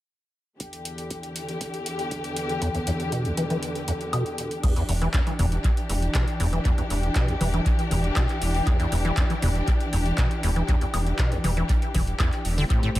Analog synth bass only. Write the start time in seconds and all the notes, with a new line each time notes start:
4.89 E1
5.39 E1
5.89 E1
6.40 E1
6.90 E1
7.41 E1
7.91 E1
8.42 E1
8.92 E1
9.42 E1
9.93 E1
10.43 E1
10.94 E1
11.44 E1
11.95 E1
12.45 E1
12.95 A1